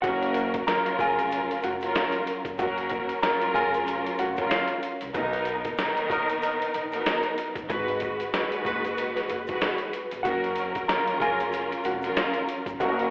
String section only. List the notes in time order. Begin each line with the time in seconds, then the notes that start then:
0.04 F#3 C#4 F#4 A#4
0.67 F#3 C#4 F4 A#4
1.82 F#3 C#4 F4 A#4
2.59 F#3 C#4 F#4 A#4
3.22 F#3 C#4 F4 A#4
4.36 F#3 C#4 F4 A#4
5.14 B2 B3 D#4 A#4
5.78 D#3 B3 D#4 A#4
6.92 B2 B3 D#4 A#4
7.69 G#2 G#3 F#4 B4
8.32 G#2 G#3 F#4 B4
9.47 G#2 G#3 F#4 B4
10.25 F#3 C#4 F#4 A#4
10.88 F#3 C#4 F4 A#4
12.03 F#3 C#4 F4 A#4
12.79 F#3 C#4 F#4 A#4